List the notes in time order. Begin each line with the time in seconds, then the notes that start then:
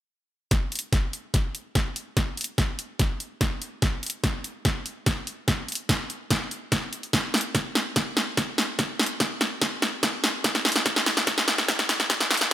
0.51 kick, snare, closed hi-hat
0.72 closed hi-hat
0.75 closed hi-hat
0.79 closed hi-hat
0.93 kick, snare, closed hi-hat
1.13 closed hi-hat
1.34 kick, snare, closed hi-hat
1.55 closed hi-hat
1.75 kick, snare, closed hi-hat
1.96 closed hi-hat
2.17 kick, snare, closed hi-hat
2.37 closed hi-hat
2.41 closed hi-hat
2.44 closed hi-hat
2.58 kick, snare, closed hi-hat
2.79 closed hi-hat
2.99 kick, snare, closed hi-hat
3.20 closed hi-hat
3.41 kick, snare, closed hi-hat
3.62 closed hi-hat
3.82 kick, snare, closed hi-hat
4.03 closed hi-hat
4.06 closed hi-hat
4.10 closed hi-hat
4.24 kick, snare, closed hi-hat
4.44 closed hi-hat
4.65 kick, snare, closed hi-hat
4.86 closed hi-hat
5.06 kick, snare, closed hi-hat
5.27 closed hi-hat
5.48 kick, snare, closed hi-hat
5.68 closed hi-hat
5.72 closed hi-hat
5.75 closed hi-hat
5.89 kick, snare, closed hi-hat
6.10 closed hi-hat
6.31 kick, snare, closed hi-hat
6.51 closed hi-hat
6.72 kick, snare, closed hi-hat
6.93 closed hi-hat
7.03 closed hi-hat
7.13 kick, snare, closed hi-hat
7.34 snare, closed hi-hat
7.38 closed hi-hat
7.41 closed hi-hat
7.55 kick, snare, closed hi-hat
7.75 snare, closed hi-hat
7.96 kick, snare, closed hi-hat
8.17 snare, closed hi-hat
8.37 kick, snare, closed hi-hat
8.58 snare, open hi-hat
8.79 kick, snare, closed hi-hat
8.99 snare, closed hi-hat
9.03 closed hi-hat
9.06 closed hi-hat
9.20 kick, snare, closed hi-hat
9.41 snare, closed hi-hat
9.62 kick, snare, closed hi-hat
9.82 snare, closed hi-hat
10.03 kick, snare, closed hi-hat
10.24 snare, open hi-hat
10.44 kick, snare, closed hi-hat
10.55 snare
10.65 snare, closed hi-hat
10.69 closed hi-hat
10.72 snare, closed hi-hat
10.86 kick, snare, closed hi-hat
10.96 snare
11.06 snare, closed hi-hat
11.17 snare
11.27 kick, snare, closed hi-hat
11.38 snare
11.48 snare, closed hi-hat
11.58 snare
11.68 kick, snare, closed hi-hat
11.79 snare
11.89 snare, open hi-hat
12.00 snare
12.10 kick, snare, closed hi-hat
12.21 snare
12.31 snare, closed hi-hat
12.34 closed hi-hat
12.37 snare, closed hi-hat